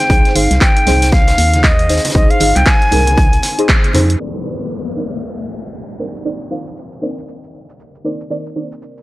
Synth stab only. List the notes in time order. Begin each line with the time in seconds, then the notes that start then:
0.10 D#4 G#4 C5
0.35 D#4 G#4 C5
0.86 D#4 G#4 C5
1.89 D#4 G#4 C5
2.15 D#4 G#4 C5
2.40 D#4 G#4 F5
2.91 D#4 G#4 A#4
3.58 D#4 G#4 C5
3.94 D#4 G#4 C5
4.20 D#4 A#4 C5 D5
4.45 D#4 A#4 C5 D5
4.96 D#4 A#4 C5 D5
5.99 D#4 A#4 C5 D5
6.25 D#4 A#4 C5 D5
6.51 D#4 A#4 C5 F5
7.01 D#4 A#4 C5 D5
8.04 D#4 A#4 C5 D5
8.30 D#4 A#4 C5 D5
8.56 D#4 A#4 C5 D5